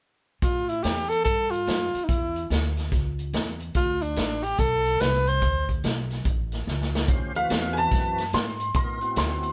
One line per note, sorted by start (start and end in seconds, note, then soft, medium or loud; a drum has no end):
0.42 0.83 A2 medium
0.42 0.70 F4 medium
0.42 kick loud
0.42 closed hi-hat medium
0.69 0.85 E4 medium
0.69 closed hi-hat medium
0.83 1.24 E2 medium
0.83 1.11 G4 medium
0.83 snare medium
0.83 closed hi-hat medium
1.09 1.24 A4 medium
1.09 closed hi-hat medium
1.24 1.66 G2 medium
1.24 1.52 A4 medium
1.24 kick medium
1.24 closed hi-hat medium
1.51 2.06 F4 medium
1.51 closed hi-hat medium
1.67 1.92 F#2 medium
1.67 snare medium
1.67 closed hi-hat medium
1.94 muted upright bass stroke soft
1.94 closed hi-hat medium
2.04 2.10 D#4 medium
2.08 2.49 E2 medium
2.08 2.50 E4 medium
2.08 kick loud
2.08 closed hi-hat medium
2.36 closed hi-hat medium
2.50 2.91 D2 medium
2.50 snare medium
2.50 closed hi-hat medium
2.77 snare soft
2.77 closed hi-hat medium
2.92 3.33 C#2 medium
2.92 kick medium
2.92 snare soft
2.92 closed hi-hat medium
3.19 closed hi-hat medium
3.33 3.74 E2 medium
3.33 snare loud
3.33 closed hi-hat medium
3.60 closed hi-hat medium
3.75 4.16 D2 medium
3.75 4.03 F4 medium
3.75 kick loud
3.75 closed hi-hat medium
4.01 4.45 D4 medium
4.01 closed hi-hat medium
4.16 4.58 A1 medium
4.16 snare medium
4.16 closed hi-hat medium
4.43 4.61 G4 medium
4.43 closed hi-hat medium
4.59 4.99 B1 medium
4.59 5.02 A4 loud
4.59 kick medium
4.59 closed hi-hat medium
4.86 closed hi-hat medium
5.00 5.41 C2 medium
5.00 5.30 B4 medium
5.00 snare medium
5.00 closed hi-hat medium
5.27 5.70 C5 medium
5.27 closed hi-hat medium
5.42 5.83 D2 medium
5.42 kick loud
5.42 closed hi-hat medium
5.69 kick medium
5.69 closed hi-hat medium
5.84 6.24 B1 medium
5.84 snare medium
5.84 closed hi-hat medium
6.10 snare soft
6.10 closed hi-hat soft
6.25 6.66 A1 medium
6.25 kick loud
6.25 closed hi-hat medium
6.52 snare soft
6.52 closed hi-hat medium
6.67 7.08 C#2 medium
6.67 snare soft
6.81 snare soft
6.95 snare medium
7.08 7.49 D2 medium
7.08 7.32 C#4 soft
7.08 7.33 F4 soft
7.08 7.33 G4 soft
7.08 7.33 C5 medium
7.08 kick loud
7.08 closed hi-hat medium
7.34 8.24 E3 soft
7.34 8.24 C4 medium
7.34 8.25 F#4 medium
7.34 8.25 B4 medium
7.34 7.76 F5 loud
7.34 closed hi-hat medium
7.50 7.91 E2 medium
7.50 snare loud
7.50 closed hi-hat medium
7.73 7.75 G#5 medium
7.73 closed hi-hat medium
7.78 8.32 A5 medium
7.91 8.32 F#2 medium
7.91 kick loud
7.91 snare soft
7.91 closed hi-hat medium
8.18 snare soft
8.18 closed hi-hat medium
8.33 8.74 G#2 medium
8.33 8.74 C6 medium
8.33 snare loud
8.33 closed hi-hat medium
8.60 closed hi-hat medium
8.74 9.15 A2 medium
8.74 8.99 B3 medium
8.74 8.99 D#4 soft
8.74 8.99 F4 soft
8.74 9.00 A#4 medium
8.74 9.16 C6 medium
8.74 kick loud
8.74 closed hi-hat medium
9.01 9.52 B3 medium
9.01 9.52 C4 medium
9.01 9.52 E4 medium
9.01 9.52 F#4 medium
9.01 closed hi-hat medium
9.16 9.52 D2 medium
9.16 9.52 C6 medium
9.16 snare loud
9.16 closed hi-hat medium
9.43 closed hi-hat medium